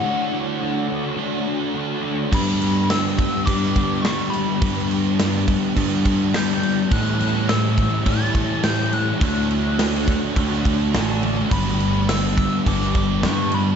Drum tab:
CC |----------------|x-x-x-x-x-x-x-x-|x-x-x-x-x-x-x-x-|x-x-x-x-x-x-x-x-|
SD |----------------|----o----o--o---|----o-------o---|----o-------o---|
BD |----------------|o-----o-o-o-----|o-----o-o-o-----|o-----o-o-o-----|

CC |x-x-x-x-x-x-x-x-|x-x-x-x-x-x-x-x-|
SD |----o----o--o---|----o----o--o---|
BD |o-----o-o-o-----|o-----o-o-o-----|